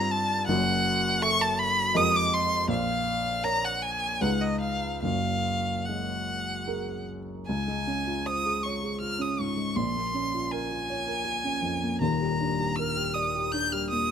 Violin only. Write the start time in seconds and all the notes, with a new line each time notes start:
Already playing: A#5
0.11 A5
0.47 F#5
1.22 C#6
1.41 A5
1.59 B5
1.97 D#6
2.16 D6
2.34 C6
2.70 F5
3.44 A#5
3.64 F#5
3.83 G#5
4.21 F#5
4.41 D#5
4.60 F5
5.02 F5
5.85 F#5
7.47 G#5
8.26 D#6
8.63 C#6
9.01 F6
9.22 D#6
9.40 C#6
9.76 C6
10.51 G#5
12.01 A#5
12.76 F6
13.14 D#6
13.52 G6
13.72 F6
13.90 D#6